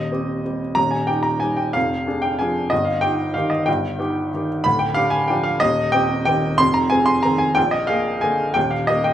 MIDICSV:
0, 0, Header, 1, 2, 480
1, 0, Start_track
1, 0, Tempo, 324149
1, 1139, Time_signature, 3, 2, 24, 8
1, 11685, Tempo, 335196
1, 13466, End_track
2, 0, Start_track
2, 0, Title_t, "Upright piano"
2, 0, Program_c, 0, 0
2, 0, Control_c, 0, 64, 127
2, 0, Note_on_c, 0, 27, 42
2, 0, Note_on_c, 0, 39, 44
2, 0, Note_on_c, 0, 75, 66
2, 156, Note_off_c, 0, 27, 0
2, 156, Note_off_c, 0, 39, 0
2, 172, Note_on_c, 0, 60, 38
2, 181, Note_on_c, 0, 67, 41
2, 619, Note_off_c, 0, 60, 0
2, 624, Note_off_c, 0, 67, 0
2, 673, Note_on_c, 0, 55, 33
2, 681, Note_on_c, 0, 60, 31
2, 683, Note_on_c, 0, 67, 34
2, 896, Note_off_c, 0, 75, 0
2, 1095, Note_off_c, 0, 55, 0
2, 1099, Note_off_c, 0, 60, 0
2, 1100, Note_off_c, 0, 67, 0
2, 1110, Note_on_c, 0, 82, 92
2, 1137, Note_on_c, 0, 27, 46
2, 1137, Note_on_c, 0, 39, 47
2, 1167, Control_c, 0, 64, 0
2, 1344, Note_on_c, 0, 80, 62
2, 1356, Note_off_c, 0, 82, 0
2, 1366, Control_c, 0, 64, 127
2, 1585, Note_on_c, 0, 79, 73
2, 1595, Note_off_c, 0, 27, 0
2, 1595, Note_off_c, 0, 39, 0
2, 1597, Note_off_c, 0, 80, 0
2, 1612, Note_on_c, 0, 63, 40
2, 1618, Note_on_c, 0, 67, 42
2, 1817, Note_on_c, 0, 82, 70
2, 1844, Note_off_c, 0, 79, 0
2, 2059, Note_off_c, 0, 63, 0
2, 2062, Note_off_c, 0, 67, 0
2, 2069, Note_on_c, 0, 80, 69
2, 2088, Note_off_c, 0, 82, 0
2, 2099, Note_on_c, 0, 55, 35
2, 2104, Note_on_c, 0, 63, 32
2, 2109, Note_on_c, 0, 67, 34
2, 2319, Note_on_c, 0, 79, 62
2, 2338, Note_off_c, 0, 80, 0
2, 2543, Note_off_c, 0, 55, 0
2, 2546, Note_off_c, 0, 63, 0
2, 2549, Note_off_c, 0, 67, 0
2, 2567, Note_on_c, 0, 77, 85
2, 2578, Note_off_c, 0, 79, 0
2, 2591, Note_on_c, 0, 41, 52
2, 2595, Note_on_c, 0, 29, 45
2, 2624, Control_c, 0, 64, 0
2, 2831, Control_c, 0, 64, 127
2, 3050, Note_off_c, 0, 41, 0
2, 3053, Note_off_c, 0, 29, 0
2, 3068, Note_on_c, 0, 62, 36
2, 3076, Note_on_c, 0, 68, 44
2, 3283, Note_on_c, 0, 79, 73
2, 3291, Note_off_c, 0, 77, 0
2, 3502, Note_off_c, 0, 62, 0
2, 3506, Note_off_c, 0, 68, 0
2, 3533, Note_on_c, 0, 80, 68
2, 3538, Note_off_c, 0, 79, 0
2, 3560, Note_on_c, 0, 53, 37
2, 3567, Note_on_c, 0, 62, 38
2, 3571, Note_on_c, 0, 68, 41
2, 3976, Note_off_c, 0, 53, 0
2, 3980, Note_off_c, 0, 62, 0
2, 3982, Note_off_c, 0, 68, 0
2, 3995, Note_on_c, 0, 75, 81
2, 4009, Note_off_c, 0, 80, 0
2, 4028, Note_on_c, 0, 43, 51
2, 4031, Note_on_c, 0, 31, 45
2, 4043, Control_c, 0, 64, 0
2, 4217, Note_on_c, 0, 77, 59
2, 4233, Note_off_c, 0, 75, 0
2, 4268, Control_c, 0, 64, 127
2, 4459, Note_on_c, 0, 79, 85
2, 4465, Note_off_c, 0, 77, 0
2, 4470, Note_off_c, 0, 43, 0
2, 4471, Note_off_c, 0, 31, 0
2, 4487, Note_on_c, 0, 63, 46
2, 4492, Note_on_c, 0, 67, 44
2, 4919, Note_off_c, 0, 63, 0
2, 4921, Note_off_c, 0, 67, 0
2, 4945, Note_on_c, 0, 77, 71
2, 4953, Note_off_c, 0, 79, 0
2, 4973, Note_on_c, 0, 51, 40
2, 4977, Note_on_c, 0, 63, 39
2, 4981, Note_on_c, 0, 67, 40
2, 5179, Note_on_c, 0, 75, 67
2, 5194, Note_off_c, 0, 77, 0
2, 5394, Note_off_c, 0, 51, 0
2, 5396, Note_off_c, 0, 63, 0
2, 5398, Note_off_c, 0, 67, 0
2, 5416, Note_on_c, 0, 79, 77
2, 5424, Note_off_c, 0, 75, 0
2, 5448, Note_on_c, 0, 31, 49
2, 5448, Note_on_c, 0, 43, 58
2, 5464, Control_c, 0, 64, 0
2, 5669, Control_c, 0, 64, 127
2, 5902, Note_off_c, 0, 31, 0
2, 5902, Note_off_c, 0, 43, 0
2, 5907, Note_on_c, 0, 63, 44
2, 5916, Note_on_c, 0, 67, 50
2, 6358, Note_off_c, 0, 63, 0
2, 6363, Note_off_c, 0, 67, 0
2, 6426, Note_on_c, 0, 51, 35
2, 6433, Note_on_c, 0, 63, 40
2, 6437, Note_on_c, 0, 67, 41
2, 6644, Note_off_c, 0, 79, 0
2, 6851, Note_off_c, 0, 51, 0
2, 6855, Note_off_c, 0, 63, 0
2, 6857, Note_off_c, 0, 67, 0
2, 6868, Note_on_c, 0, 83, 94
2, 6895, Note_on_c, 0, 26, 53
2, 6898, Note_on_c, 0, 38, 59
2, 6917, Control_c, 0, 64, 0
2, 7092, Note_on_c, 0, 79, 73
2, 7108, Note_off_c, 0, 83, 0
2, 7143, Control_c, 0, 64, 127
2, 7322, Note_on_c, 0, 77, 94
2, 7338, Note_off_c, 0, 79, 0
2, 7340, Note_off_c, 0, 26, 0
2, 7342, Note_off_c, 0, 38, 0
2, 7352, Note_on_c, 0, 62, 45
2, 7358, Note_on_c, 0, 67, 50
2, 7557, Note_on_c, 0, 80, 78
2, 7578, Note_off_c, 0, 77, 0
2, 7793, Note_off_c, 0, 62, 0
2, 7796, Note_off_c, 0, 67, 0
2, 7813, Note_on_c, 0, 79, 68
2, 7824, Note_off_c, 0, 80, 0
2, 7842, Note_on_c, 0, 53, 40
2, 7848, Note_on_c, 0, 62, 40
2, 7850, Note_on_c, 0, 67, 46
2, 8048, Note_on_c, 0, 77, 80
2, 8074, Note_off_c, 0, 79, 0
2, 8279, Note_off_c, 0, 53, 0
2, 8282, Note_off_c, 0, 62, 0
2, 8283, Note_off_c, 0, 67, 0
2, 8291, Note_on_c, 0, 75, 96
2, 8307, Note_off_c, 0, 77, 0
2, 8317, Note_on_c, 0, 39, 59
2, 8322, Note_on_c, 0, 27, 57
2, 8352, Control_c, 0, 64, 0
2, 8562, Control_c, 0, 64, 127
2, 8767, Note_on_c, 0, 79, 100
2, 8780, Note_off_c, 0, 39, 0
2, 8781, Note_off_c, 0, 75, 0
2, 8783, Note_off_c, 0, 27, 0
2, 8794, Note_on_c, 0, 60, 49
2, 8803, Note_on_c, 0, 67, 50
2, 9236, Note_off_c, 0, 60, 0
2, 9239, Note_off_c, 0, 79, 0
2, 9241, Note_off_c, 0, 67, 0
2, 9261, Note_on_c, 0, 79, 91
2, 9290, Note_on_c, 0, 51, 37
2, 9296, Note_on_c, 0, 60, 39
2, 9300, Note_on_c, 0, 67, 43
2, 9722, Note_off_c, 0, 51, 0
2, 9726, Note_off_c, 0, 60, 0
2, 9727, Note_off_c, 0, 67, 0
2, 9741, Note_on_c, 0, 84, 110
2, 9756, Note_off_c, 0, 79, 0
2, 9763, Note_on_c, 0, 41, 60
2, 9770, Note_on_c, 0, 29, 56
2, 9794, Control_c, 0, 64, 0
2, 9978, Note_on_c, 0, 82, 80
2, 9987, Note_off_c, 0, 84, 0
2, 10037, Control_c, 0, 64, 127
2, 10212, Note_on_c, 0, 80, 93
2, 10221, Note_off_c, 0, 41, 0
2, 10225, Note_off_c, 0, 29, 0
2, 10227, Note_off_c, 0, 82, 0
2, 10237, Note_on_c, 0, 60, 49
2, 10246, Note_on_c, 0, 68, 51
2, 10449, Note_on_c, 0, 84, 88
2, 10468, Note_off_c, 0, 80, 0
2, 10675, Note_off_c, 0, 60, 0
2, 10680, Note_off_c, 0, 68, 0
2, 10701, Note_on_c, 0, 82, 84
2, 10709, Note_off_c, 0, 84, 0
2, 10730, Note_on_c, 0, 51, 39
2, 10736, Note_on_c, 0, 60, 42
2, 10740, Note_on_c, 0, 68, 44
2, 10933, Note_on_c, 0, 80, 80
2, 10954, Note_off_c, 0, 82, 0
2, 11158, Note_off_c, 0, 51, 0
2, 11160, Note_off_c, 0, 60, 0
2, 11163, Note_off_c, 0, 68, 0
2, 11175, Note_on_c, 0, 79, 94
2, 11186, Note_off_c, 0, 80, 0
2, 11204, Note_on_c, 0, 34, 58
2, 11205, Note_on_c, 0, 46, 53
2, 11230, Control_c, 0, 64, 0
2, 11417, Control_c, 0, 64, 127
2, 11420, Note_on_c, 0, 75, 74
2, 11426, Note_off_c, 0, 79, 0
2, 11656, Note_on_c, 0, 77, 88
2, 11669, Note_off_c, 0, 34, 0
2, 11669, Note_off_c, 0, 46, 0
2, 11672, Note_off_c, 0, 75, 0
2, 11686, Note_on_c, 0, 58, 45
2, 11686, Note_on_c, 0, 68, 54
2, 12117, Note_off_c, 0, 58, 0
2, 12117, Note_off_c, 0, 68, 0
2, 12144, Note_on_c, 0, 80, 80
2, 12150, Note_off_c, 0, 77, 0
2, 12170, Note_on_c, 0, 50, 40
2, 12173, Note_on_c, 0, 58, 40
2, 12181, Note_on_c, 0, 68, 44
2, 12594, Note_off_c, 0, 50, 0
2, 12595, Note_off_c, 0, 58, 0
2, 12599, Note_off_c, 0, 68, 0
2, 12612, Note_on_c, 0, 79, 89
2, 12627, Note_off_c, 0, 80, 0
2, 12639, Note_on_c, 0, 27, 52
2, 12642, Note_on_c, 0, 39, 60
2, 12664, Control_c, 0, 64, 0
2, 12854, Note_on_c, 0, 77, 64
2, 12858, Note_off_c, 0, 79, 0
2, 12894, Control_c, 0, 64, 127
2, 13090, Note_on_c, 0, 75, 87
2, 13099, Note_off_c, 0, 27, 0
2, 13101, Note_off_c, 0, 39, 0
2, 13104, Note_off_c, 0, 77, 0
2, 13121, Note_on_c, 0, 58, 44
2, 13126, Note_on_c, 0, 67, 45
2, 13333, Note_on_c, 0, 79, 76
2, 13347, Note_off_c, 0, 75, 0
2, 13466, Note_off_c, 0, 58, 0
2, 13466, Note_off_c, 0, 67, 0
2, 13466, Note_off_c, 0, 79, 0
2, 13466, End_track
0, 0, End_of_file